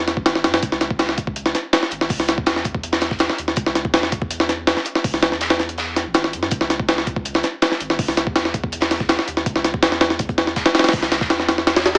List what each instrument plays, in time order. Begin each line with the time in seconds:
Already playing: sub bass E2
0.08 snare, closed hi-hat
0.17 sub bass G#1, kick
0.26 snare, closed hi-hat
0.35 snare
0.44 sub bass F#2, snare, closed hi-hat
0.54 snare, closed hi-hat
0.62 sub bass C#2, kick, closed hi-hat
0.72 snare
0.81 snare, closed hi-hat
0.91 kick
0.99 snare, closed hi-hat
1.09 snare
1.18 kick, closed hi-hat
1.27 kick
1.36 closed hi-hat
1.46 snare, closed hi-hat
1.55 snare, closed hi-hat
1.73 snare, closed hi-hat
1.82 snare, closed hi-hat
1.91 sub bass G#1, closed hi-hat
2.01 snare
2.09 sub bass C#2, kick, open hi-hat
2.20 snare
2.28 snare, closed hi-hat
2.38 sub bass E2, kick
2.46 snare, closed hi-hat
2.56 snare
2.65 kick, closed hi-hat
2.75 kick
2.83 closed hi-hat
2.92 snare
3.01 snare, closed hi-hat
3.11 kick, snare
3.19 snare, closed hi-hat
3.30 snare, closed hi-hat
3.38 sub bass D#2, closed hi-hat
3.48 snare
3.56 sub bass C#2, kick, closed hi-hat
3.66 snare
3.75 snare, closed hi-hat
3.85 sub bass E2, kick
3.94 snare, closed hi-hat
4.03 snare
4.12 kick, closed hi-hat
4.22 kick
4.31 closed hi-hat
4.40 snare, closed hi-hat
4.49 snare, closed hi-hat
4.67 snare, closed hi-hat
4.76 snare, closed hi-hat
4.85 closed hi-hat
4.95 snare
5.04 sub bass C#2, kick, open hi-hat
5.14 snare
5.23 snare, closed hi-hat
5.32 sub bass E2, snare
5.41 snare, closed hi-hat
5.50 snare, closed hi-hat
5.59 snare, closed hi-hat
5.69 closed hi-hat
5.78 snare, closed hi-hat
5.96 snare, closed hi-hat
6.06 sub bass G#1
6.14 snare, closed hi-hat
6.24 snare, closed hi-hat
6.33 sub bass F#2, closed hi-hat
6.43 snare
6.51 sub bass C#2, kick, closed hi-hat
6.61 snare
6.70 snare, closed hi-hat
6.80 kick
6.88 snare, closed hi-hat
6.98 snare
7.07 kick, closed hi-hat
7.16 kick
7.25 closed hi-hat
7.34 snare, closed hi-hat
7.43 snare, closed hi-hat
7.62 snare, closed hi-hat
7.72 snare, closed hi-hat
7.80 sub bass G#1, closed hi-hat
7.90 snare
7.99 sub bass C#2, kick, open hi-hat
8.08 snare
8.17 snare, closed hi-hat
8.27 sub bass E2, kick
8.36 snare, closed hi-hat
8.45 snare
8.54 kick, closed hi-hat
8.64 kick
8.72 closed hi-hat
8.81 snare
8.91 snare, closed hi-hat
9.00 kick, snare
9.09 snare, closed hi-hat
9.19 snare, closed hi-hat
9.28 sub bass D#2, closed hi-hat
9.37 snare
9.46 sub bass C#2, kick, closed hi-hat
9.56 snare
9.64 snare, closed hi-hat
9.74 sub bass E2, kick
9.83 snare, closed hi-hat
9.92 snare
10.01 snare, closed hi-hat
10.10 snare
10.19 kick, closed hi-hat
10.29 kick, closed hi-hat
10.38 snare, closed hi-hat
10.47 snare
10.56 kick, snare, closed hi-hat
10.66 snare, closed hi-hat
10.75 snare, closed hi-hat
10.79 snare, closed hi-hat
10.84 snare, closed hi-hat
10.88 snare, closed hi-hat
10.93 sub bass C#2, kick, open hi-hat
11.03 snare, closed hi-hat
11.12 snare, closed hi-hat
11.21 sub bass E2, kick, snare, closed hi-hat
11.30 snare, closed hi-hat
11.40 snare
11.49 snare, closed hi-hat
11.58 snare
11.67 snare, closed hi-hat
11.76 snare, closed hi-hat
11.81 snare, closed hi-hat
11.86 snare, closed hi-hat